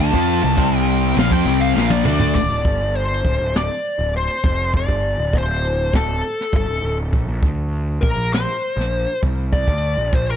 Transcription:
Already playing: picked electric bass D2, distorted electric guitar D3 A3 D4
0.00 lead electric guitar A5
0.12 picked electric bass F2, distorted electric guitar F3 C4 F4, kick
0.28 ride
0.43 picked electric bass C2, distorted electric guitar C3 G3
0.57 picked electric bass C2, distorted electric guitar C3 G3 C4, kick, ride
0.77 lead electric guitar G5
0.87 ride
1.16 picked electric bass A#1, distorted electric guitar A#2 F3, lead electric guitar F5, snare, ride
1.30 picked electric bass F2, distorted electric guitar F3 C4, lead electric guitar G5, kick
1.46 picked electric bass C2, distorted electric guitar C3 G3 C4, ride
1.61 lead electric guitar F5
1.76 picked electric bass A#1, distorted electric guitar A#2 F3 A#3, snare
1.90 lead electric guitar D5, high tom
2.05 picked electric bass D2, distorted electric guitar D3 A3 D4, lead electric guitar D5, mid tom
2.20 floor tom
2.35 picked electric bass D1, lead electric guitar D5, kick, crash
2.50 picked electric bass D1
2.65 picked electric bass G1, kick, open hi-hat
2.95 lead electric guitar C5, open hi-hat
3.25 picked electric bass D1, kick, open hi-hat
3.40 picked electric bass D1
3.54 lead electric guitar D5, snare, open hi-hat
3.84 open hi-hat
3.99 picked electric bass D1
4.14 lead electric guitar C5, open hi-hat
4.44 picked electric bass F1, kick
4.74 lead electric guitar D5, kick, open hi-hat
4.88 picked electric bass G1, kick
5.03 open hi-hat
5.18 picked electric bass D1
5.33 picked electric bass D1, lead electric guitar C5, kick, open hi-hat
5.63 open hi-hat
5.93 picked electric bass D1, lead electric guitar A4, kick, snare, open hi-hat
6.23 open hi-hat
6.41 snare
6.53 picked electric bass G1, lead electric guitar A4, kick, open hi-hat
6.68 picked electric bass D1
6.82 picked electric bass D1, open hi-hat
7.13 picked electric bass A#1, kick, open hi-hat
7.28 picked electric bass A#1
7.42 picked electric bass D2, kick, open hi-hat
7.72 open hi-hat
8.02 picked electric bass A#1, lead electric guitar A#4, kick, open hi-hat
8.17 picked electric bass A#1
8.32 lead electric guitar C5, snare, open hi-hat
8.63 open hi-hat
8.76 picked electric bass A#1, snare
8.93 open hi-hat
9.23 picked electric bass C2, kick, open hi-hat
9.53 lead electric guitar D5, kick, open hi-hat
9.67 picked electric bass D2, kick
9.83 open hi-hat
9.96 picked electric bass A#1
10.13 picked electric bass A#1, lead electric guitar C5, kick, open hi-hat
10.30 lead electric guitar A#4

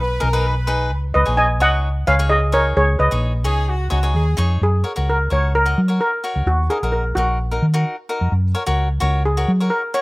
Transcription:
Already playing: fingered electric bass B1, steel pan B4 D#5
0.01 horn section B4
0.20 fingered electric bass B1, cavaquinho D#4 G#4 A#4, horn section A#4
0.33 cavaquinho D#4 G#4 B4
0.46 horn section B4
0.67 cavaquinho D#4 G#4 B4
0.92 fingered electric bass C#2
1.14 fingered electric bass C#2, steel pan B4 D#5
1.26 fingered electric bass A#1, cavaquinho D#4 G#4 C#5
1.37 steel pan D#5 G#5
1.60 fingered electric bass C#2, cavaquinho D#4 G#4 C#5, steel pan D#5 F#5
2.07 fingered electric bass C#2, cavaquinho D#4 G#4 B4, steel pan C#5 F5
2.19 cavaquinho D#4 G#4 C#5
2.29 steel pan G#4 D#5
2.52 cavaquinho D#4 G#4 C#5, steel pan A#4 C#5
2.77 fingered electric bass C#2, steel pan G#4 C#5
2.99 fingered electric bass C#2, steel pan B4 D#5
3.11 fingered electric bass A#1, cavaquinho D#4 G#4 C#5
3.44 fingered electric bass C#2, cavaquinho D#4 G#4 C#5, horn section G#4
3.69 horn section F#4
3.90 fingered electric bass C#2, cavaquinho D#4 G#4 C#5, horn section F#4
4.03 cavaquinho D#4 G#4 C#5
4.14 fingered electric bass D#2, horn section G#4
4.37 fingered electric bass F2, cavaquinho D#4 G#4 C#5
4.61 fingered electric bass F#2, steel pan G#4
4.84 cavaquinho F#4 A#4 C#5
4.96 fingered electric bass C#2, cavaquinho F#4 A#4 C#5
5.10 steel pan A#4
5.30 fingered electric bass C#2, cavaquinho F#4 A#4 C#5, steel pan C#5
5.55 steel pan A#4
5.66 cavaquinho F#4 A#4 D#5
5.78 fingered electric bass F#3
5.88 cavaquinho F#4 A#4 C#5
6.01 steel pan A#4
6.24 cavaquinho F#4 A#4 C#5
6.36 fingered electric bass C#2
6.46 fingered electric bass D#2, steel pan F#4
6.70 cavaquinho D#4 F#4 A#4, steel pan G#4
6.83 fingered electric bass A#1, cavaquinho D#4 F#4 A#4
6.92 steel pan A#4
7.15 fingered electric bass A#1, cavaquinho D#4 F#4 A#4, steel pan F#4
7.51 cavaquinho D#4 F#4 A#4
7.62 fingered electric bass D#3
7.74 cavaquinho D#4 F#4 A#4
8.09 cavaquinho D#4 F#4 A#4
8.21 fingered electric bass F2
8.32 fingered electric bass F#2
8.55 cavaquinho F#4 A#4 C#5
8.66 fingered electric bass C#2, cavaquinho F#4 A#4 C#5
9.00 fingered electric bass C#2, cavaquinho F#4 A#4 C#5
9.25 steel pan G#4
9.37 cavaquinho F#4 A#4 C#5
9.48 fingered electric bass F#3
9.60 cavaquinho F#4 A#4 C#5
9.70 steel pan A#4
9.94 cavaquinho F#4 A#4 C#5, steel pan C#5

